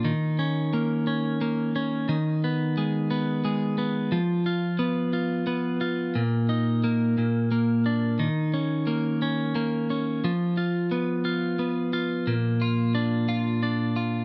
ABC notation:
X:1
M:6/8
L:1/8
Q:3/8=59
K:Bbphr
V:1 name="Clean electric guitar"
E, D B, D B, D | E, C A, C A, C | F, F C F C F | B,, E B, B,, B, =D |
E, D B, D B, D | F, F C F C F | B,, F =D F D F |]